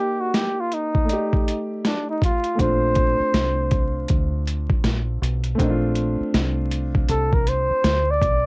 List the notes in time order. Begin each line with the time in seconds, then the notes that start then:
Already playing: A#3 D#4 G4 D5
0.21 F#4
0.34 G4, snare, closed hi-hat
0.60 F4
0.72 D#4, closed hi-hat
0.95 kick
1.05 A3 D5
1.09 D#4 G4, closed hi-hat
1.33 kick
1.48 closed hi-hat
1.85 D4, snare, closed hi-hat
2.09 D#4
2.22 F4, kick, closed hi-hat
2.44 closed hi-hat
2.55 A3 C4
2.59 A#1 D4 F4 C5, kick, closed hi-hat
2.95 kick, closed hi-hat
3.20 muted fingered electric bass stroke
3.34 C2, snare, closed hi-hat
3.71 kick, closed hi-hat
4.08 D2, kick, closed hi-hat
4.47 closed hi-hat
4.70 kick
4.84 A#1, snare, closed hi-hat
5.22 B1, closed hi-hat
5.44 closed hi-hat
5.55 A3 C4
5.59 A#1 D4 D#4, kick, closed hi-hat
5.70 F4
5.95 closed hi-hat
6.20 muted fingered electric bass stroke
6.34 C2, snare, closed hi-hat
6.71 closed hi-hat
6.95 kick
7.09 C2 A4, closed hi-hat
7.33 A#4, kick
7.47 C5, closed hi-hat
7.71 muted fingered electric bass stroke
7.84 D2, snare, closed hi-hat
8.11 D5
8.22 B1, kick, closed hi-hat